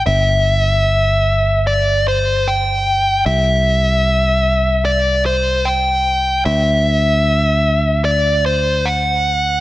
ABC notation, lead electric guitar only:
X:1
M:4/4
L:1/8
Q:1/4=75
K:Clyd
V:1 name="Lead electric guitar"
e4 d c g2 | e4 d c g2 | e4 d c f2 |]